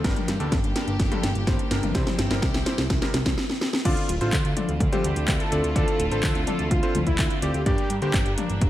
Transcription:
0.04 G1 G2 G3 A#3 D4 G4 A#4, kick, snare, closed hi-hat
0.16 closed hi-hat, high tom
0.28 G2, snare, closed hi-hat
0.40 D2 G2 G3 A#3 D4 A4, closed hi-hat
0.52 G1, kick, snare, closed hi-hat
0.64 G1, closed hi-hat
0.76 G2 G3 A#3 D4 A#4, snare, closed hi-hat
0.87 G1, closed hi-hat
1.00 G1, kick, snare, closed hi-hat
1.11 G2 G3 A#3 D4 A4, closed hi-hat, high tom
1.23 G1, snare, closed hi-hat
1.35 G1, closed hi-hat
1.47 G1 G2 G3 A#3 D4 C5, kick, snare, closed hi-hat
1.59 closed hi-hat
1.71 G1 C3 G3 A#3 D4 A#4, snare, closed hi-hat
1.83 G1, closed hi-hat, high tom
1.95 C2 C3 G3 C4 E4 G4 C5, kick, snare, closed hi-hat
2.07 snare, closed hi-hat, high tom
2.18 G1, snare, closed hi-hat
2.30 G1 C3 G3 C4 E4 A#4, snare, closed hi-hat
2.42 C2, kick, snare, closed hi-hat
2.54 C2, snare, closed hi-hat
2.66 C3 G3 C4 E4 C5, snare, closed hi-hat
2.78 C2, snare, closed hi-hat
2.90 C2, kick, snare, closed hi-hat
3.02 C3 G3 C4 E4 A#4, snare, closed hi-hat
3.14 C2, snare, closed hi-hat
3.26 C2, kick, snare, closed hi-hat
3.38 snare
3.50 snare
3.61 snare
3.73 snare
3.85 D2 D3 A3 C4 E4 F4 A4 D5, kick, closed hi-hat, crash
3.97 closed hi-hat
4.09 D1, closed hi-hat
4.21 A1 D3 C4 F4 A4 C5, closed hi-hat
4.33 D2, kick, clap, closed hi-hat
4.45 D2, closed hi-hat
4.57 D3 C4 F4 A4 D5, closed hi-hat, high tom
4.69 D2, closed hi-hat
4.80 D2, kick, closed hi-hat
4.92 D3 C4 F4 G4 A4 C5, closed hi-hat, high tom
5.04 D2, closed hi-hat
5.16 D2, closed hi-hat
5.28 D2 D3 C4 F4 A4 E5, kick, clap, closed hi-hat
5.40 A4, closed hi-hat
5.52 D2 D3 C4 F4 A4 D5, closed hi-hat
5.64 D2, closed hi-hat
5.76 D2 D3 C4 F4 A4 D5, kick, closed hi-hat
5.88 closed hi-hat
5.99 D1, closed hi-hat
6.11 A1 D3 C4 F4 A4 C5, closed hi-hat
6.23 D2, kick, clap, closed hi-hat
6.35 D2, closed hi-hat
6.47 D3 C4 F4 A4 D5, closed hi-hat, high tom
6.59 D2, closed hi-hat
6.71 D2 F4, kick, closed hi-hat
6.83 D3 C4 F4 A4 C5, closed hi-hat
6.95 D2, closed hi-hat, high tom
7.07 D2 E4, kick, closed hi-hat
7.18 D2 D3 C4 F4 A4 E5, kick, clap, closed hi-hat
7.30 closed hi-hat
7.42 D2 C4 F4 G4 A4 D5, closed hi-hat
7.54 D2, closed hi-hat
7.66 G1 G2 G3 A#3 D4 G4 D5, kick, closed hi-hat
7.78 closed hi-hat
7.90 G2, closed hi-hat
8.02 D2 G2 A#3 D4 G4 C5, closed hi-hat
8.14 G1, kick, clap, closed hi-hat
8.26 G1, closed hi-hat
8.38 G2 A#3 D4 G4 D5, closed hi-hat, high tom
8.50 G1, closed hi-hat
8.61 G1, kick, closed hi-hat

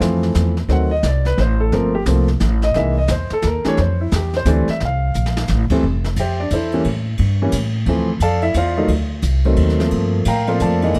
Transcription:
Already playing: F5
0.00 F2 E3 F3 A3 C4, snare, hi-hat pedal
0.23 snare
0.35 E2, snare, hi-hat pedal
0.57 snare
0.68 D2 D#3 F#3 A3 C4, brush sweep, snare
0.72 F#5
0.91 D#5
1.03 C2 D5, snare, hi-hat pedal
1.25 B4, snare
1.38 A1 C5, snare
1.60 A4
1.72 G1 F3 A3 A#3 C4 A#4, brush sweep, snare
1.95 G4
2.06 C2 F3 A3 A#3 C4, snare, hi-hat pedal
2.28 snare
2.40 A1, snare, hi-hat pedal
2.62 D#5, snare
2.74 C2 E3 G#3 A#3 D#4 E5, brush sweep, snare
2.98 D#5
3.08 E2 C5, snare, hi-hat pedal
3.30 A4, muted upright bass stroke, snare
3.42 D#2, snare, hi-hat pedal
3.47 A#4
3.64 E3 G3 A3 D4, muted upright bass stroke, snare
3.68 C#5
3.77 F2 C5, brush sweep, snare
4.01 E4
4.12 E2 G4, snare, hi-hat pedal
4.33 C5, snare
4.45 D2 E3 G3 A3 C4 D5, snare, hi-hat pedal
4.68 E5, muted upright bass stroke, snare
4.80 C2, brush sweep, snare
4.85 F5
5.14 A#1, hi-hat pedal
5.26 snare
5.37 snare
5.48 A1, snare, hi-hat pedal
5.70 F2 E3 G3 A3 C4, muted upright bass stroke, kick, crash
5.83 F1
6.04 snare
6.16 F2 G4 E5 G5, hi-hat pedal, ride
6.20 C5
6.40 D4 D5
6.50 E2 E4 A4 C5 E5, hi-hat pedal, ride
6.72 E3 G3 A#3 C#4, ride
6.84 A2, ride
7.18 G2, ride
7.42 E3 G3 A#3 C#4
7.52 A2, hi-hat pedal, ride
7.86 D2 E3 F3 A3 C4, ride
8.20 F2 A4 D5 F5 A5, hi-hat pedal, ride
8.42 E4 E5, ride
8.54 E2 F4 C5 D5 F5, hi-hat pedal, ride
8.77 D#3 F#3 A3 D#4
8.88 D2, ride
9.22 C2, hi-hat pedal, ride
9.44 D#3 F#3 A3 C4, ride
9.56 D#2, ride
9.69 snare
9.79 F3 A3 A#3 C4, snare
9.91 G2, ride
10.25 A2 A#4 F5 G5 A#5, hi-hat pedal, ride
10.47 F3 A3 A#3 C4 F4 C5 D5 F5, ride
10.60 F2 A4 D5 F5 A5, hi-hat pedal, ride
10.82 E3 G#3 A#3 D#4, ride
10.94 C3, ride

